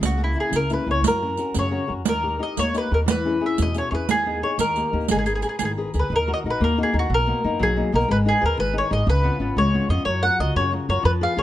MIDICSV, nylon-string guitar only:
0, 0, Header, 1, 2, 480
1, 0, Start_track
1, 0, Key_signature, 5, "minor"
1, 0, Tempo, 337268
1, 34, Time_signature, 6, 3, 24, 8
1, 8677, Key_signature, -6, "minor"
1, 9154, Tempo, 329308
1, 16435, End_track
2, 0, Start_track
2, 0, Title_t, "Nylon-string guitar"
2, 0, Program_c, 0, 24
2, 16, Note_on_c, 0, 49, 46
2, 246, Note_on_c, 0, 58, 36
2, 260, Note_on_c, 0, 61, 32
2, 266, Note_on_c, 0, 64, 37
2, 482, Note_off_c, 0, 58, 0
2, 488, Note_off_c, 0, 61, 0
2, 490, Note_off_c, 0, 49, 0
2, 491, Note_off_c, 0, 64, 0
2, 499, Note_on_c, 0, 58, 34
2, 505, Note_on_c, 0, 61, 34
2, 509, Note_on_c, 0, 64, 44
2, 706, Note_on_c, 0, 49, 48
2, 890, Note_off_c, 0, 58, 0
2, 894, Note_off_c, 0, 61, 0
2, 895, Note_off_c, 0, 64, 0
2, 996, Note_on_c, 0, 64, 39
2, 1003, Note_on_c, 0, 58, 37
2, 1009, Note_on_c, 0, 61, 34
2, 1195, Note_off_c, 0, 49, 0
2, 1224, Note_off_c, 0, 58, 0
2, 1232, Note_off_c, 0, 61, 0
2, 1241, Note_on_c, 0, 58, 33
2, 1243, Note_off_c, 0, 64, 0
2, 1249, Note_on_c, 0, 61, 33
2, 1260, Note_on_c, 0, 64, 39
2, 1427, Note_off_c, 0, 58, 0
2, 1431, Note_off_c, 0, 61, 0
2, 1438, Note_off_c, 0, 64, 0
2, 1474, Note_on_c, 0, 54, 43
2, 1731, Note_on_c, 0, 61, 35
2, 1740, Note_on_c, 0, 70, 36
2, 1741, Note_on_c, 0, 66, 31
2, 1943, Note_off_c, 0, 54, 0
2, 1945, Note_off_c, 0, 61, 0
2, 1955, Note_off_c, 0, 66, 0
2, 1960, Note_off_c, 0, 70, 0
2, 1962, Note_on_c, 0, 61, 32
2, 1970, Note_on_c, 0, 66, 31
2, 1980, Note_on_c, 0, 70, 38
2, 2202, Note_on_c, 0, 49, 52
2, 2350, Note_off_c, 0, 61, 0
2, 2356, Note_off_c, 0, 66, 0
2, 2359, Note_off_c, 0, 70, 0
2, 2433, Note_on_c, 0, 61, 36
2, 2438, Note_on_c, 0, 66, 33
2, 2444, Note_on_c, 0, 70, 36
2, 2649, Note_off_c, 0, 66, 0
2, 2653, Note_off_c, 0, 61, 0
2, 2655, Note_off_c, 0, 70, 0
2, 2666, Note_on_c, 0, 61, 34
2, 2668, Note_on_c, 0, 66, 29
2, 2672, Note_off_c, 0, 49, 0
2, 2679, Note_on_c, 0, 70, 34
2, 2863, Note_off_c, 0, 66, 0
2, 2865, Note_off_c, 0, 61, 0
2, 2867, Note_off_c, 0, 70, 0
2, 2917, Note_on_c, 0, 51, 48
2, 3167, Note_on_c, 0, 63, 35
2, 3175, Note_on_c, 0, 67, 33
2, 3187, Note_on_c, 0, 70, 35
2, 3385, Note_off_c, 0, 63, 0
2, 3392, Note_off_c, 0, 51, 0
2, 3396, Note_off_c, 0, 67, 0
2, 3402, Note_on_c, 0, 63, 38
2, 3405, Note_off_c, 0, 70, 0
2, 3413, Note_on_c, 0, 67, 30
2, 3422, Note_on_c, 0, 70, 36
2, 3656, Note_on_c, 0, 58, 46
2, 3795, Note_off_c, 0, 63, 0
2, 3802, Note_off_c, 0, 67, 0
2, 3807, Note_off_c, 0, 70, 0
2, 3894, Note_on_c, 0, 63, 38
2, 3908, Note_on_c, 0, 67, 30
2, 3914, Note_on_c, 0, 70, 42
2, 4123, Note_off_c, 0, 58, 0
2, 4126, Note_off_c, 0, 63, 0
2, 4134, Note_off_c, 0, 67, 0
2, 4140, Note_off_c, 0, 70, 0
2, 4143, Note_on_c, 0, 63, 38
2, 4151, Note_on_c, 0, 67, 33
2, 4157, Note_on_c, 0, 70, 41
2, 4328, Note_off_c, 0, 63, 0
2, 4333, Note_off_c, 0, 67, 0
2, 4336, Note_off_c, 0, 70, 0
2, 4355, Note_on_c, 0, 52, 48
2, 4628, Note_on_c, 0, 61, 39
2, 4635, Note_on_c, 0, 64, 32
2, 4638, Note_on_c, 0, 68, 37
2, 4827, Note_off_c, 0, 52, 0
2, 4833, Note_off_c, 0, 61, 0
2, 4836, Note_off_c, 0, 64, 0
2, 4843, Note_off_c, 0, 68, 0
2, 4849, Note_on_c, 0, 61, 41
2, 4854, Note_on_c, 0, 64, 34
2, 4860, Note_on_c, 0, 68, 38
2, 5107, Note_on_c, 0, 47, 52
2, 5234, Note_off_c, 0, 61, 0
2, 5235, Note_off_c, 0, 64, 0
2, 5239, Note_off_c, 0, 68, 0
2, 5325, Note_on_c, 0, 61, 34
2, 5330, Note_on_c, 0, 64, 33
2, 5332, Note_on_c, 0, 68, 41
2, 5558, Note_off_c, 0, 61, 0
2, 5560, Note_off_c, 0, 68, 0
2, 5561, Note_off_c, 0, 47, 0
2, 5564, Note_off_c, 0, 64, 0
2, 5574, Note_on_c, 0, 61, 36
2, 5579, Note_on_c, 0, 68, 40
2, 5584, Note_on_c, 0, 64, 33
2, 5759, Note_off_c, 0, 61, 0
2, 5760, Note_off_c, 0, 68, 0
2, 5762, Note_off_c, 0, 64, 0
2, 5815, Note_on_c, 0, 51, 49
2, 6060, Note_on_c, 0, 59, 40
2, 6067, Note_on_c, 0, 68, 40
2, 6069, Note_on_c, 0, 63, 36
2, 6274, Note_off_c, 0, 51, 0
2, 6276, Note_off_c, 0, 59, 0
2, 6287, Note_off_c, 0, 68, 0
2, 6288, Note_off_c, 0, 63, 0
2, 6293, Note_on_c, 0, 59, 34
2, 6303, Note_on_c, 0, 63, 31
2, 6308, Note_on_c, 0, 68, 45
2, 6476, Note_off_c, 0, 59, 0
2, 6483, Note_off_c, 0, 63, 0
2, 6483, Note_off_c, 0, 68, 0
2, 6520, Note_on_c, 0, 51, 58
2, 6773, Note_on_c, 0, 58, 37
2, 6778, Note_on_c, 0, 63, 40
2, 6786, Note_on_c, 0, 67, 40
2, 6986, Note_off_c, 0, 51, 0
2, 7003, Note_off_c, 0, 58, 0
2, 7003, Note_off_c, 0, 63, 0
2, 7012, Note_off_c, 0, 67, 0
2, 7017, Note_on_c, 0, 58, 38
2, 7024, Note_on_c, 0, 63, 32
2, 7029, Note_on_c, 0, 67, 43
2, 7200, Note_off_c, 0, 58, 0
2, 7201, Note_off_c, 0, 63, 0
2, 7205, Note_off_c, 0, 67, 0
2, 7256, Note_on_c, 0, 56, 50
2, 7493, Note_off_c, 0, 56, 0
2, 7493, Note_on_c, 0, 70, 36
2, 7499, Note_on_c, 0, 68, 34
2, 7509, Note_on_c, 0, 71, 39
2, 7732, Note_off_c, 0, 68, 0
2, 7736, Note_off_c, 0, 70, 0
2, 7748, Note_off_c, 0, 71, 0
2, 7748, Note_on_c, 0, 68, 40
2, 7755, Note_on_c, 0, 70, 33
2, 7765, Note_on_c, 0, 71, 43
2, 7989, Note_on_c, 0, 51, 48
2, 8126, Note_off_c, 0, 68, 0
2, 8128, Note_off_c, 0, 70, 0
2, 8136, Note_off_c, 0, 71, 0
2, 8222, Note_on_c, 0, 68, 37
2, 8232, Note_on_c, 0, 71, 45
2, 8233, Note_on_c, 0, 70, 32
2, 8442, Note_off_c, 0, 68, 0
2, 8443, Note_off_c, 0, 70, 0
2, 8444, Note_off_c, 0, 51, 0
2, 8454, Note_off_c, 0, 71, 0
2, 8459, Note_on_c, 0, 68, 39
2, 8461, Note_on_c, 0, 70, 37
2, 8471, Note_on_c, 0, 71, 41
2, 8641, Note_off_c, 0, 68, 0
2, 8641, Note_off_c, 0, 70, 0
2, 8648, Note_off_c, 0, 71, 0
2, 8711, Note_on_c, 0, 51, 54
2, 8935, Note_on_c, 0, 66, 39
2, 8936, Note_on_c, 0, 63, 40
2, 8944, Note_on_c, 0, 70, 45
2, 9159, Note_off_c, 0, 51, 0
2, 9171, Note_off_c, 0, 66, 0
2, 9172, Note_off_c, 0, 63, 0
2, 9184, Note_off_c, 0, 70, 0
2, 9188, Note_on_c, 0, 63, 40
2, 9194, Note_on_c, 0, 66, 35
2, 9201, Note_on_c, 0, 70, 41
2, 9409, Note_on_c, 0, 58, 63
2, 9564, Note_off_c, 0, 66, 0
2, 9565, Note_off_c, 0, 63, 0
2, 9572, Note_off_c, 0, 70, 0
2, 9657, Note_on_c, 0, 63, 45
2, 9667, Note_on_c, 0, 66, 36
2, 9667, Note_on_c, 0, 70, 52
2, 9872, Note_off_c, 0, 58, 0
2, 9872, Note_off_c, 0, 70, 0
2, 9874, Note_off_c, 0, 63, 0
2, 9874, Note_off_c, 0, 66, 0
2, 9891, Note_on_c, 0, 63, 42
2, 9892, Note_on_c, 0, 66, 37
2, 9892, Note_on_c, 0, 70, 50
2, 10075, Note_off_c, 0, 70, 0
2, 10076, Note_off_c, 0, 66, 0
2, 10077, Note_off_c, 0, 63, 0
2, 10125, Note_on_c, 0, 47, 52
2, 10371, Note_on_c, 0, 58, 44
2, 10380, Note_on_c, 0, 63, 47
2, 10383, Note_on_c, 0, 59, 42
2, 10589, Note_off_c, 0, 47, 0
2, 10608, Note_off_c, 0, 58, 0
2, 10609, Note_off_c, 0, 59, 0
2, 10611, Note_off_c, 0, 63, 0
2, 10623, Note_on_c, 0, 58, 42
2, 10630, Note_on_c, 0, 63, 50
2, 10631, Note_on_c, 0, 59, 38
2, 10849, Note_on_c, 0, 54, 67
2, 11000, Note_off_c, 0, 58, 0
2, 11000, Note_off_c, 0, 59, 0
2, 11002, Note_off_c, 0, 63, 0
2, 11097, Note_on_c, 0, 58, 39
2, 11101, Note_on_c, 0, 63, 49
2, 11106, Note_on_c, 0, 59, 40
2, 11308, Note_off_c, 0, 54, 0
2, 11312, Note_off_c, 0, 58, 0
2, 11312, Note_off_c, 0, 59, 0
2, 11324, Note_off_c, 0, 63, 0
2, 11329, Note_on_c, 0, 58, 45
2, 11331, Note_on_c, 0, 59, 44
2, 11341, Note_on_c, 0, 63, 51
2, 11511, Note_off_c, 0, 59, 0
2, 11512, Note_off_c, 0, 58, 0
2, 11518, Note_off_c, 0, 63, 0
2, 11560, Note_on_c, 0, 56, 49
2, 11808, Note_on_c, 0, 63, 45
2, 11824, Note_on_c, 0, 68, 38
2, 11828, Note_on_c, 0, 71, 47
2, 12016, Note_off_c, 0, 63, 0
2, 12020, Note_off_c, 0, 68, 0
2, 12020, Note_off_c, 0, 71, 0
2, 12021, Note_off_c, 0, 56, 0
2, 12030, Note_on_c, 0, 63, 47
2, 12040, Note_on_c, 0, 68, 41
2, 12043, Note_on_c, 0, 71, 54
2, 12278, Note_on_c, 0, 51, 67
2, 12418, Note_off_c, 0, 63, 0
2, 12421, Note_off_c, 0, 68, 0
2, 12421, Note_off_c, 0, 71, 0
2, 12507, Note_on_c, 0, 63, 43
2, 12512, Note_on_c, 0, 68, 34
2, 12519, Note_on_c, 0, 71, 46
2, 12738, Note_off_c, 0, 68, 0
2, 12740, Note_off_c, 0, 51, 0
2, 12740, Note_off_c, 0, 63, 0
2, 12746, Note_off_c, 0, 71, 0
2, 12756, Note_on_c, 0, 63, 39
2, 12760, Note_on_c, 0, 68, 37
2, 12763, Note_on_c, 0, 71, 47
2, 12941, Note_off_c, 0, 68, 0
2, 12942, Note_off_c, 0, 63, 0
2, 12946, Note_off_c, 0, 71, 0
2, 12989, Note_on_c, 0, 49, 53
2, 13233, Note_on_c, 0, 59, 45
2, 13243, Note_on_c, 0, 61, 38
2, 13259, Note_on_c, 0, 65, 45
2, 13456, Note_off_c, 0, 49, 0
2, 13461, Note_off_c, 0, 61, 0
2, 13463, Note_off_c, 0, 59, 0
2, 13478, Note_on_c, 0, 61, 42
2, 13482, Note_off_c, 0, 65, 0
2, 13483, Note_on_c, 0, 59, 40
2, 13499, Note_on_c, 0, 65, 44
2, 13726, Note_on_c, 0, 56, 59
2, 13865, Note_off_c, 0, 61, 0
2, 13866, Note_off_c, 0, 59, 0
2, 13877, Note_off_c, 0, 65, 0
2, 13967, Note_on_c, 0, 59, 41
2, 13980, Note_on_c, 0, 61, 33
2, 13993, Note_on_c, 0, 65, 44
2, 14191, Note_off_c, 0, 56, 0
2, 14200, Note_off_c, 0, 61, 0
2, 14204, Note_off_c, 0, 59, 0
2, 14212, Note_off_c, 0, 65, 0
2, 14216, Note_on_c, 0, 61, 37
2, 14225, Note_on_c, 0, 59, 42
2, 14229, Note_on_c, 0, 65, 49
2, 14400, Note_off_c, 0, 61, 0
2, 14403, Note_off_c, 0, 59, 0
2, 14407, Note_off_c, 0, 65, 0
2, 14458, Note_on_c, 0, 54, 53
2, 14697, Note_on_c, 0, 65, 38
2, 14704, Note_on_c, 0, 66, 34
2, 14719, Note_on_c, 0, 70, 45
2, 14920, Note_off_c, 0, 54, 0
2, 14924, Note_off_c, 0, 65, 0
2, 14925, Note_off_c, 0, 66, 0
2, 14933, Note_off_c, 0, 70, 0
2, 14940, Note_on_c, 0, 65, 40
2, 14947, Note_on_c, 0, 66, 40
2, 14950, Note_on_c, 0, 70, 44
2, 15178, Note_on_c, 0, 49, 62
2, 15320, Note_off_c, 0, 65, 0
2, 15321, Note_off_c, 0, 66, 0
2, 15325, Note_off_c, 0, 70, 0
2, 15402, Note_on_c, 0, 65, 43
2, 15414, Note_on_c, 0, 66, 39
2, 15422, Note_on_c, 0, 70, 45
2, 15635, Note_off_c, 0, 65, 0
2, 15636, Note_off_c, 0, 49, 0
2, 15636, Note_off_c, 0, 66, 0
2, 15641, Note_off_c, 0, 70, 0
2, 15652, Note_on_c, 0, 65, 41
2, 15655, Note_on_c, 0, 66, 39
2, 15659, Note_on_c, 0, 70, 45
2, 15836, Note_off_c, 0, 65, 0
2, 15837, Note_off_c, 0, 66, 0
2, 15840, Note_off_c, 0, 70, 0
2, 15854, Note_on_c, 0, 53, 58
2, 16121, Note_on_c, 0, 71, 49
2, 16123, Note_on_c, 0, 68, 37
2, 16127, Note_on_c, 0, 65, 42
2, 16327, Note_off_c, 0, 65, 0
2, 16331, Note_off_c, 0, 53, 0
2, 16333, Note_off_c, 0, 68, 0
2, 16335, Note_off_c, 0, 71, 0
2, 16344, Note_on_c, 0, 65, 43
2, 16350, Note_on_c, 0, 68, 38
2, 16356, Note_on_c, 0, 71, 47
2, 16435, Note_off_c, 0, 65, 0
2, 16435, Note_off_c, 0, 68, 0
2, 16435, Note_off_c, 0, 71, 0
2, 16435, End_track
0, 0, End_of_file